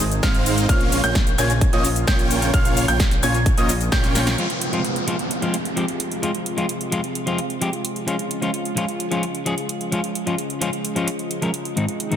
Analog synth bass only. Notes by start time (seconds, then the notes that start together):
Already playing: G#1
1.04 A#1
1.38 A#1
1.73 A#1
2.88 A#1
3.23 A#1
3.58 A#1